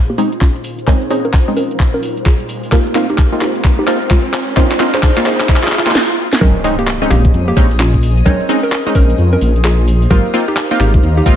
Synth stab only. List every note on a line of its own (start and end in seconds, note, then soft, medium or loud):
0.00 0.16 G#3 medium
0.00 0.16 C4 medium
0.00 0.16 C#4 medium
0.00 0.16 D#4 medium
0.18 0.29 G#3 loud
0.18 0.29 C4 medium
0.18 0.29 C#4 medium
0.18 0.29 D#4 loud
0.87 1.08 G#3 medium
0.87 1.08 C4 medium
0.87 1.08 C#4 medium
0.87 1.08 D#4 loud
1.10 1.22 G#3 medium
1.10 1.22 C4 medium
1.10 1.22 C#4 medium
1.10 1.22 D#4 loud
1.48 2.70 G#3 medium
1.48 2.70 C4 medium
1.48 2.70 C#4 medium
1.48 2.70 D#4 medium
2.72 2.93 A#3 medium
2.72 2.93 C4 medium
2.72 2.93 D#4 medium
2.72 2.93 F4 medium
2.95 3.06 A#3 medium
2.95 3.06 C4 medium
2.95 3.06 D#4 medium
2.95 3.06 F4 loud
3.32 3.85 A#3 medium
3.32 3.85 C4 medium
3.32 3.85 D#4 medium
3.32 3.85 F4 medium
3.87 3.99 A#3 loud
3.87 3.99 C4 medium
3.87 3.99 D#4 medium
3.87 3.99 F4 loud
4.57 4.78 A#3 medium
4.57 4.78 C4 medium
4.57 4.78 D#4 medium
4.57 4.78 F4 loud
4.80 4.91 A#3 medium
4.80 4.91 C4 medium
4.80 4.91 D#4 medium
4.80 4.91 F4 loud
5.17 5.84 A#3 medium
5.17 5.84 C4 medium
5.17 5.84 D#4 medium
5.17 5.84 F4 medium
5.86 5.93 A#3 medium
5.86 5.93 C4 medium
5.86 5.93 D#4 medium
5.86 5.93 F4 medium
6.41 6.62 G#3 medium
6.41 6.62 C4 medium
6.41 6.62 C#4 medium
6.41 6.62 D#4 medium
6.64 6.75 G#3 medium
6.64 6.75 C4 medium
6.64 6.75 C#4 medium
6.64 6.75 D#4 loud
7.02 7.55 G#3 medium
7.02 7.55 C4 medium
7.02 7.55 C#4 medium
7.02 7.55 D#4 medium
7.57 7.68 G#3 loud
7.57 7.68 C4 medium
7.57 7.68 C#4 medium
7.57 7.68 D#4 loud
8.26 8.47 G#3 medium
8.26 8.47 C4 medium
8.26 8.47 C#4 medium
8.26 8.47 D#4 loud
8.49 8.60 G#3 loud
8.49 8.60 C4 medium
8.49 8.60 C#4 medium
8.49 8.60 D#4 loud
8.87 10.08 G#3 medium
8.87 10.08 C4 medium
8.87 10.09 C#4 medium
8.87 10.08 D#4 medium
10.11 10.32 A#3 medium
10.11 10.32 C4 medium
10.11 10.32 D#4 medium
10.11 10.32 F4 medium
10.34 10.45 A#3 medium
10.34 10.45 C4 medium
10.34 10.45 D#4 medium
10.34 10.45 F4 medium
10.71 11.24 A#3 medium
10.71 11.24 C4 medium
10.71 11.24 D#4 medium
10.71 11.24 F4 medium
11.26 11.36 A#3 medium
11.26 11.36 C4 medium
11.26 11.36 D#4 medium
11.26 11.36 F4 loud